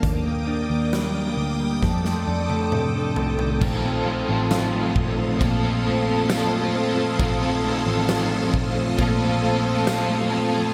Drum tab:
CC |----------------|x---------------|----------------|
RD |----------------|----x---x---x---|x---x---x---x---|
HH |x---x-----------|----------------|----------------|
TB |----------------|----x-------x---|----x-------x---|
SD |----o---oo------|----o-------o---|----o-------o---|
T1 |-----------o----|----------------|----------------|
T2 |------------o---|----------------|----------------|
FT |--------------oo|----------------|----------------|
BD |o-------o-------|o-----o-o-------|o-----o-o-------|